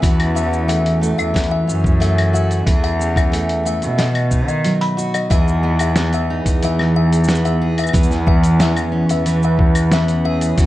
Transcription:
0.00 1.10 E2 loud
0.00 1.34 E3 medium
0.00 0.35 C#4 medium
0.00 2.32 F#4 medium
0.00 kick loud
0.00 open hi-hat medium
0.00 shaker soft
0.20 open hi-hat soft
0.20 claves medium
0.35 1.67 C#4 medium
0.35 0.45 E5 medium
0.35 shaker medium
0.53 shaker soft
0.68 1.01 A3 medium
0.68 0.85 E5 medium
0.68 open hi-hat medium
0.68 shaker soft
0.86 open hi-hat soft
1.01 2.00 A3 medium
1.01 shaker medium
1.18 1.60 E2 medium
1.18 1.28 E5 medium
1.18 claves medium
1.18 shaker soft
1.34 2.65 E3 medium
1.34 kick medium
1.34 snare medium
1.34 open hi-hat medium
1.34 shaker soft
1.44 open hi-hat soft
1.51 1.67 E5 medium
1.67 2.59 F#2 medium
1.67 2.73 C#4 medium
1.67 shaker medium
1.84 kick loud
1.84 shaker soft
2.00 3.31 A3 medium
2.00 2.10 E5 medium
2.00 open hi-hat medium
2.00 shaker soft
2.18 open hi-hat soft
2.18 claves medium
2.33 2.66 F#4 medium
2.33 2.50 E5 medium
2.33 shaker medium
2.51 open hi-hat soft
2.51 shaker soft
2.67 3.74 E2 loud
2.67 4.05 E3 medium
2.67 4.06 G#4 medium
2.67 kick loud
2.67 open hi-hat medium
2.67 shaker soft
2.84 2.93 E5 medium
2.84 open hi-hat soft
2.99 4.05 C#4 medium
2.99 shaker medium
3.16 3.32 E5 medium
3.16 kick medium
3.16 open hi-hat soft
3.16 claves medium
3.16 shaker soft
3.32 3.64 A3 medium
3.32 open hi-hat medium
3.32 shaker soft
3.49 open hi-hat soft
3.65 4.05 A3 medium
3.65 3.75 E5 medium
3.65 shaker medium
3.82 4.49 B2 medium
3.82 open hi-hat soft
3.82 shaker soft
3.98 5.37 B2 medium
3.98 4.15 D#5 medium
3.98 snare medium
3.98 open hi-hat medium
3.98 shaker soft
4.15 open hi-hat soft
4.15 claves medium
4.31 6.30 D#4 medium
4.31 kick medium
4.31 shaker medium
4.48 4.64 D#3 medium
4.48 4.64 D#5 medium
4.48 shaker soft
4.64 5.30 F#3 medium
4.64 open hi-hat medium
4.64 shaker soft
4.81 4.97 B5 medium
4.81 open hi-hat soft
4.97 5.30 F#4 medium
4.97 shaker medium
5.14 5.30 D#5 medium
5.14 open hi-hat soft
5.14 claves medium
5.14 shaker soft
5.30 6.38 E2 loud
5.30 10.66 E3 medium
5.30 6.62 E3 medium
5.30 7.61 G#4 medium
5.30 5.46 E5 medium
5.30 kick loud
5.30 open hi-hat medium
5.30 shaker medium
5.48 shaker soft
5.63 5.96 B3 medium
5.67 8.99 B3 medium
5.79 5.90 E5 medium
5.79 open hi-hat soft
5.79 claves medium
5.79 shaker medium
5.96 7.27 B3 medium
5.96 snare loud
5.96 open hi-hat medium
5.96 shaker medium
6.02 8.83 G#4 medium
6.13 6.29 E5 medium
6.13 open hi-hat soft
6.13 shaker soft
6.30 8.01 D#4 medium
6.46 7.86 E2 medium
6.46 kick loud
6.46 open hi-hat soft
6.46 shaker medium
6.62 7.93 E3 medium
6.62 6.73 E5 medium
6.62 open hi-hat medium
6.62 shaker medium
6.79 snare soft
6.79 claves medium
6.96 7.11 E5 medium
7.13 open hi-hat soft
7.13 shaker medium
7.24 8.26 B3 medium
7.24 shaker medium
7.29 snare medium
7.29 open hi-hat soft
7.29 shaker soft
7.35 shaker soft
7.45 7.54 E5 medium
7.45 open hi-hat soft
7.45 shaker soft
7.62 7.94 G#4 medium
7.78 7.94 E5 medium
7.78 open hi-hat soft
7.78 claves soft
7.78 shaker soft
7.84 claves medium
7.84 shaker soft
7.89 claves medium
7.93 9.02 E2 loud
7.93 9.26 E3 medium
7.93 10.24 G#4 medium
7.93 kick loud
7.93 open hi-hat medium
7.93 shaker medium
8.03 shaker medium
8.11 snare soft
8.11 shaker soft
8.23 8.58 B3 medium
8.23 10.66 C#4 medium
8.23 kick loud
8.28 8.37 E5 medium
8.43 open hi-hat soft
8.43 shaker medium
8.59 9.91 B3 medium
8.59 8.76 E5 medium
8.59 snare loud
8.59 open hi-hat medium
8.59 shaker medium
8.76 open hi-hat soft
8.76 claves medium
8.76 shaker soft
8.92 10.66 C#4 medium
9.05 10.66 B4 medium
9.09 10.50 E2 medium
9.09 9.20 E5 medium
9.09 open hi-hat soft
9.09 shaker medium
9.26 10.58 E3 medium
9.26 open hi-hat medium
9.26 shaker medium
9.43 9.59 E5 medium
9.43 shaker soft
9.59 kick loud
9.75 open hi-hat soft
9.75 claves medium
9.75 shaker medium
9.92 10.64 B3 medium
9.92 10.02 E5 medium
9.92 snare medium
9.92 open hi-hat medium
9.92 shaker medium
10.08 open hi-hat soft
10.08 shaker soft
10.25 10.58 G#4 medium
10.25 10.41 E5 medium
10.41 open hi-hat soft
10.41 shaker medium
10.58 10.66 E2 loud
10.58 10.66 E3 medium
10.58 10.66 F#4 medium
10.58 kick loud
10.58 open hi-hat medium
10.58 shaker medium

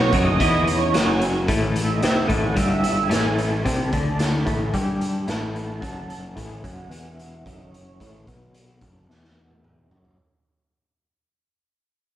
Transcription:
0.00 0.11 B2 medium
0.00 0.12 C#5 medium
0.13 0.38 F#1 medium
0.13 0.39 F#2 medium
0.13 0.64 D#5 loud
0.13 kick medium
0.13 closed hi-hat medium
0.40 0.90 E2 medium
0.40 0.93 E3 medium
0.40 kick medium
0.40 closed hi-hat medium
0.67 0.96 C#5 medium
0.67 closed hi-hat medium
0.94 1.45 F#1 medium
0.94 1.47 F#2 medium
0.94 1.21 G#5 medium
0.94 snare medium
0.94 closed hi-hat medium
1.21 closed hi-hat soft
1.48 1.99 A1 medium
1.48 2.01 A2 medium
1.48 kick medium
1.48 closed hi-hat medium
1.76 1.90 E5 medium
1.76 closed hi-hat medium
1.89 2.01 D#5 medium
2.02 2.28 C2 medium
2.02 2.28 C3 medium
2.02 2.16 E5 medium
2.02 snare medium
2.02 closed hi-hat medium
2.16 2.30 F#5 medium
2.29 2.54 A1 medium
2.29 2.55 A2 medium
2.29 2.42 G#5 medium
2.29 kick medium
2.29 closed hi-hat medium
2.42 2.56 F#5 medium
2.56 3.07 G1 medium
2.56 3.09 G2 medium
2.56 2.98 E5 medium
2.56 kick medium
2.56 closed hi-hat medium
2.84 closed hi-hat medium
2.96 3.34 G#5 medium
3.09 3.62 A1 medium
3.09 3.63 A2 medium
3.09 snare loud
3.09 closed hi-hat medium
3.38 3.50 A5 medium
3.38 closed hi-hat soft
3.63 3.91 C2 medium
3.63 3.91 C3 medium
3.63 3.76 B5 loud
3.63 kick medium
3.63 closed hi-hat medium
3.77 3.90 A5 medium
3.90 4.43 D2 medium
3.90 4.46 D3 medium
3.90 4.04 G#5 medium
3.90 kick medium
3.90 closed hi-hat medium
4.04 4.19 A5 medium
4.18 4.31 C#6 loud
4.18 snare medium
4.18 closed hi-hat medium
4.31 4.46 B5 medium
4.45 4.72 A1 medium
4.45 4.72 A2 medium
4.45 4.52 A5 medium
4.45 kick medium
4.45 closed hi-hat medium
4.59 4.87 G#5 medium
4.74 5.24 G2 medium
4.74 5.27 G3 loud
4.74 kick medium
4.74 closed hi-hat medium
4.87 4.99 A5 medium
5.01 5.13 B5 medium
5.01 closed hi-hat medium
5.14 5.39 A5 medium
5.27 5.79 A1 medium
5.27 5.81 A2 medium
5.27 snare loud
5.27 closed hi-hat medium
5.42 5.54 B5 medium
5.55 5.66 A5 medium
5.55 closed hi-hat soft
5.67 6.18 A5 medium
5.81 6.33 F#1 medium
5.81 6.35 F#2 medium
5.81 kick medium
5.81 closed hi-hat medium
6.10 closed hi-hat soft
6.23 6.61 G#5 medium
6.36 6.62 A1 medium
6.36 6.62 A2 medium
6.36 kick medium
6.36 closed hi-hat medium
6.63 6.89 F#1 medium
6.63 6.90 F#2 medium
6.63 6.93 F#5 medium
6.63 kick medium
6.63 closed hi-hat medium
6.90 7.42 E1 medium
6.90 7.44 E2 loud
6.90 7.06 G#5 medium
6.90 closed hi-hat medium
7.06 7.19 E5 medium
7.18 7.32 F#5 medium
7.18 closed hi-hat medium
7.33 7.46 E5 medium
7.46 7.96 F#1 medium
7.46 7.99 F#2 medium
7.46 7.58 D#5 medium
7.46 kick medium
7.46 closed hi-hat medium
7.57 8.08 C#5 medium
7.74 closed hi-hat soft
8.00 8.25 A1 medium
8.00 8.26 A2 medium
8.00 kick medium
8.00 closed hi-hat medium
8.27 8.78 B1 medium
8.27 8.81 B2 medium
8.27 kick medium
8.27 closed hi-hat soft
8.52 8.66 C#6 loud
8.52 closed hi-hat medium
8.67 8.81 B5 medium
8.81 9.07 F#1 medium
8.81 9.08 F#2 medium
8.81 9.09 A5 medium
8.81 kick medium
8.81 closed hi-hat medium
9.08 9.87 E1 medium
9.08 9.89 E2 medium
9.08 9.14 G#5 medium
9.08 snare soft
9.23 9.36 F#5 medium
9.23 snare soft
9.37 9.64 E5 medium
9.50 high tom soft
9.64 9.77 D#5 medium
9.64 mid tom medium
9.78 10.02 C#5 medium
9.90 10.15 F#1 medium
9.90 10.17 F#2 medium
9.90 floor tom medium
10.05 floor tom medium

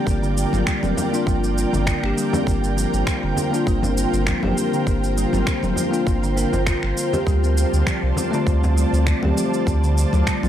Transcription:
0.00 1.08 A#3 medium
0.00 1.09 D4 medium
0.00 10.49 F4 medium
0.00 1.10 G4 medium
0.00 7.23 A#4 medium
0.00 2.43 D5 medium
0.00 7.23 G5 medium
0.07 0.45 G1 medium
0.07 kick loud
0.07 cabasa soft
0.23 0.36 D3 medium
0.23 cabasa soft
0.38 cabasa medium
0.53 0.63 G1 loud
0.53 low conga medium
0.53 cabasa soft
0.67 0.82 G3 medium
0.67 finger snap loud
0.67 kick loud
0.67 cabasa soft
0.83 0.93 F1 loud
0.83 1.26 C4 medium
0.83 low conga medium
0.83 cabasa soft
0.97 frame drum medium
0.97 cabasa medium
1.11 1.98 A#3 medium
1.11 1.99 D4 medium
1.11 2.00 F4 loud
1.11 cabasa soft
1.27 1.65 G1 medium
1.27 1.42 F3 medium
1.27 kick loud
1.27 cabasa soft
1.44 cabasa soft
1.58 cabasa medium
1.73 1.93 G1 loud
1.73 1.86 D3 medium
1.73 frame drum medium
1.73 cabasa soft
1.87 finger snap loud
1.87 kick loud
1.87 cabasa soft
2.02 2.13 G1 medium
2.02 3.49 A#3 medium
2.02 3.50 D4 medium
2.02 3.51 G4 medium
2.02 finger snap soft
2.17 2.32 G3 medium
2.17 cabasa medium
2.33 2.76 C4 medium
2.33 frame drum loud
2.33 cabasa soft
2.47 2.85 G1 medium
2.47 10.49 C5 medium
2.47 kick loud
2.47 cabasa soft
2.64 cabasa soft
2.77 2.92 F3 medium
2.77 cabasa medium
2.93 3.03 G1 loud
2.93 cabasa soft
3.07 finger snap loud
3.07 kick loud
3.07 cabasa soft
3.23 3.33 F1 loud
3.23 3.36 D3 medium
3.36 frame drum medium
3.36 cabasa medium
3.51 4.38 A#3 medium
3.51 4.39 D4 medium
3.51 cabasa soft
3.55 4.40 F4 loud
3.67 4.05 G1 medium
3.67 3.82 G3 medium
3.67 kick loud
3.67 cabasa soft
3.83 4.26 C4 medium
3.83 frame drum medium
3.83 cabasa soft
3.98 cabasa medium
4.13 4.33 G1 medium
4.13 cabasa soft
4.27 4.42 F3 medium
4.27 finger snap loud
4.27 kick loud
4.27 cabasa soft
4.41 4.53 G1 medium
4.41 5.88 A#3 medium
4.41 5.89 D4 medium
4.41 low conga medium
4.41 frame drum medium
4.45 5.90 G4 medium
4.58 cabasa medium
4.73 4.86 D3 medium
4.73 cabasa soft
4.87 5.25 G1 loud
4.87 kick loud
4.87 cabasa soft
5.04 cabasa soft
5.17 5.32 G3 medium
5.17 cabasa medium
5.33 5.43 G1 loud
5.33 5.76 C4 medium
5.33 low conga medium
5.33 cabasa soft
5.47 finger snap loud
5.47 kick loud
5.47 cabasa soft
5.63 5.73 F1 loud
5.63 low conga medium
5.63 cabasa soft
5.76 5.92 F3 medium
5.76 frame drum medium
5.76 cabasa medium
5.91 6.33 A#3 loud
5.91 6.34 D4 medium
5.91 6.34 F4 loud
5.91 cabasa soft
6.07 6.45 G1 medium
6.07 kick loud
6.07 cabasa soft
6.23 6.36 D3 medium
6.23 cabasa soft
6.36 6.50 A#3 medium
6.36 6.51 D4 medium
6.36 6.51 A#4 medium
6.36 cabasa medium
6.53 6.74 G1 medium
6.53 frame drum medium
6.53 cabasa soft
6.67 6.81 F4 medium
6.67 finger snap loud
6.67 kick loud
6.67 cabasa soft
6.83 6.93 G1 medium
6.83 finger snap soft
6.97 7.11 A#3 medium
6.97 cabasa medium
7.13 7.26 G4 medium
7.13 frame drum medium
7.13 cabasa soft
7.27 7.65 D2 medium
7.27 7.42 G3 medium
7.27 10.49 D5 medium
7.27 10.49 A5 medium
7.27 kick loud
7.27 cabasa soft
7.43 7.85 C4 medium
7.43 cabasa soft
7.58 cabasa medium
7.73 7.83 D2 loud
7.73 cabasa soft
7.87 8.02 F3 medium
7.87 finger snap loud
7.87 kick loud
7.87 cabasa soft
8.03 8.13 C2 loud
8.17 frame drum medium
8.17 cabasa medium
8.31 8.46 D3 medium
8.31 9.18 A3 loud
8.31 9.19 C4 medium
8.31 cabasa soft
8.35 9.20 F4 loud
8.47 8.85 D2 loud
8.47 kick loud
8.47 cabasa soft
8.64 frame drum loud
8.64 cabasa soft
8.77 8.92 G3 medium
8.77 cabasa medium
8.93 9.13 D2 medium
8.93 9.35 C4 medium
8.93 cabasa soft
9.07 finger snap medium
9.07 kick loud
9.07 cabasa soft
9.21 9.33 D2 medium
9.21 10.49 A3 medium
9.21 10.49 C4 medium
9.21 10.49 G4 medium
9.21 low conga medium
9.21 frame drum medium
9.37 9.52 F3 medium
9.37 cabasa medium
9.54 cabasa soft
9.67 10.05 D2 loud
9.67 kick loud
9.67 cabasa soft
9.83 9.96 D3 medium
9.83 cabasa soft
9.98 cabasa medium
10.13 10.23 D2 loud
10.13 low conga medium
10.13 cabasa soft
10.27 10.42 G3 medium
10.27 finger snap medium
10.27 kick loud
10.27 cabasa soft
10.43 10.49 C2 loud
10.43 10.49 C4 medium
10.43 low conga medium
10.43 cabasa soft

